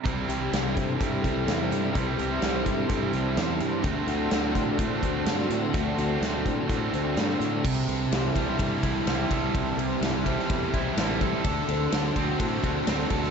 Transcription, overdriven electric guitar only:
\new Staff \with { instrumentName = "Overdriven electric guitar" } { \clef bass \time 4/4 \key c \lydian \tempo 4 = 126 <c e g c' e'>2 <c e g c' e'>2 | <c e g c' e'>2 <c e g c' e'>2 | <d a c' fis'>2 <d a c' fis'>2 | <d a c' fis'>2 <d a c' fis'>2 |
c4 e8 g8 e8 e'8 g8 a'8 | c4 e8 g8 e8 e'8 g8 a'8 | d4 d8 c'8 d8 fis'8 c'8 a'8 | }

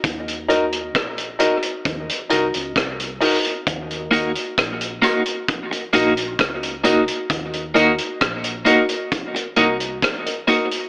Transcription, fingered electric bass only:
\new Staff \with { instrumentName = "Fingered electric bass" } { \clef bass \time 4/4 \key ees \dorian \tempo 4 = 66 ees,4 bes,,8 r8 ees,16 r16 c,16 des,16 c,8 r8 | ees,8 ees,16 r16 bes,,8 r4 bes,,8 des,8 des,16 r16 | ees,8 ees,16 r16 bes,,8 r4 c,8 r4 | }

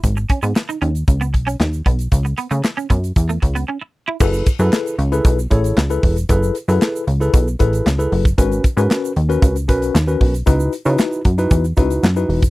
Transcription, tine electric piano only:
\new Staff \with { instrumentName = "Tine electric piano" } { \time 4/4 \key fis \dorian \tempo 4 = 115 r1 | r1 | <e' gis' a' b'>8 r16 <e' gis' a' b'>8. r16 <e' gis' a' b'>8 r16 <e' gis' a' cis''>8 r16 <e' gis' a' b'>8 r16 | <e' gis' a' b'>8 r16 <e' gis' a' b'>8. r16 <e' gis' a' b'>8 r16 <e' gis' a' b'>8 r16 <e' gis' a' b'>8 r16 |
<cis' fis' ais' b'>8 r16 <cis' fis' ais' b'>8. r16 <cis' fis' ais' b'>8 r16 <cis' fis' ais' b'>8 r16 <cis' fis' ais' b'>8 r16 | <dis' e' fis' b'>8 r16 <dis' e' fis' b'>8. r16 <dis' e' fis' b'>8 r16 <dis' e' fis' b'>8 r16 <dis' e' fis' b'>8 r16 | }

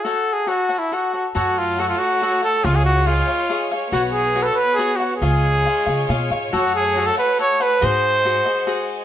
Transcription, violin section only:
\new Staff \with { instrumentName = "Violin section" } { \time 3/4 \key fis \minor \tempo 4 = 139 << { r2. | cis''2.~ | cis''2.~ | cis''2. |
cis''2.~ | cis''2. | bis'2. | } \\ { r2. | <a fis'>2. | <gis eis'>2. | <b fis'>2. |
<gis eis'>2. | <a fis'>2. | <gis fis'>2. | } >> }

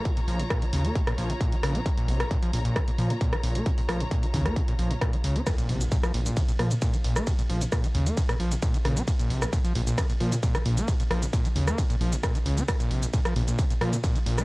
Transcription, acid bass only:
\new Staff \with { instrumentName = "Acid bass" } { \clef bass \time 4/4 \key bes \minor \tempo 4 = 133 bes,16 bes,16 f16 bes,16 bes,16 f16 des16 bes16 bes,16 bes,16 f16 bes,16 bes,16 f16 des16 des'16 | bes,16 bes,16 c16 bes,16 bes,16 f16 bes,16 bes,16 des16 bes,16 f16 bes,16 bes,16 f16 bes,16 bes16 | bes,16 bes,16 f16 bes,16 bes,16 f16 des16 bes16 bes,16 bes,16 f16 bes,16 bes,16 f16 des16 des'16 | bes,16 bes,16 c16 bes,16 bes,16 f16 bes,16 bes,16 des16 bes,16 f16 bes,16 bes,16 f16 bes,16 bes16 |
bes,16 bes,16 f16 bes,16 bes,16 f16 des16 bes16 bes,16 bes,16 f16 bes,16 bes,16 f16 des16 des'16 | bes,16 bes,16 c16 bes,16 bes,16 f16 bes,16 bes,16 des16 bes,16 f16 bes,16 bes,16 f16 bes,16 bes16 | bes,16 bes,16 f16 bes,16 bes,16 f16 des16 bes16 bes,16 bes,16 f16 bes,16 bes,16 f16 des16 des'16 | bes,16 bes,16 c16 bes,16 bes,16 f16 bes,16 bes,16 des16 bes,16 f16 bes,16 bes,16 f16 bes,16 bes16 | }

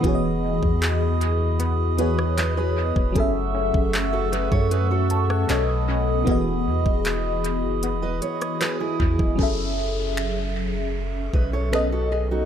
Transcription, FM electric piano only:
\new Staff \with { instrumentName = "FM electric piano" } { \time 4/4 \key fis \dorian \tempo 4 = 77 << { r1 | r2 r16 cis'''16 a''16 fis''8 r8. | r1 | r1 | } \\ { <e b fis' gis' cis'' dis''>2~ <e b fis' gis' cis'' dis''>8 <e b fis' gis' cis''>4. | <fis cis' gis' a' e''>2. <b, b cis' a' dis''>4 | <e b fis' gis' dis''>1 | <fis cis' gis' a' e''>2. <b, b cis' a' dis''>4 | } >> }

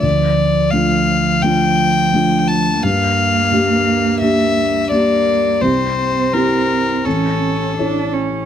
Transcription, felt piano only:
\new Staff \with { instrumentName = "Felt piano" } { \time 4/4 \key d \minor \tempo 4 = 86 d,4 <a d' f'>4 <a d' f'>4 <a d' f'>4 | g,4 <bes d' g'>4 <bes d' g'>4 <bes d' g'>4 | c,4 <c' e' g'>4 a,,4 <e' a' cis''>4 | }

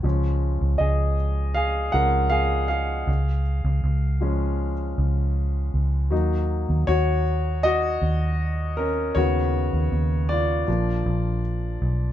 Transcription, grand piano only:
<<
  \new Staff \with { instrumentName = "Grand piano" } { \time 4/4 \key des \mixolydian \tempo 4 = 79 r4 <aes' ees''>4 <aes' f''>8 <bes' ges''>8 <aes' f''>8 <aes' f''>8~ | <aes' f''>8 r2. r8 | r4 <ges' des''>4 <ges' ees''>4. <des' bes'>8 | <fis' cis''>4. <f' d''>4. r4 | }
  \new Staff \with { instrumentName = "Grand piano" } { \clef bass \time 4/4 \key des \mixolydian <f aes des'>4. r4 <f aes des'>8 r4 | r4. <f aes des'>8 r2 | <ges bes ees'>4. r2 r8 | <cis dis b>2 <f bes d'>2 | }
>>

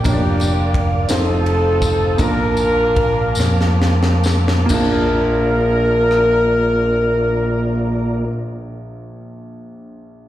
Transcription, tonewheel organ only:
\new Staff \with { instrumentName = "Tonewheel organ" } { \time 6/8 \key bes \major \tempo 4. = 43 << { <bes' d'' d'''>4. <c'' ees'''>4. | <bes' d'''>2. | <bes f' bes' d''>2.~ | <bes f' bes' d''>2. | } \\ { f''4. a''4.~ | a''2. | r2. | r2. | } >> }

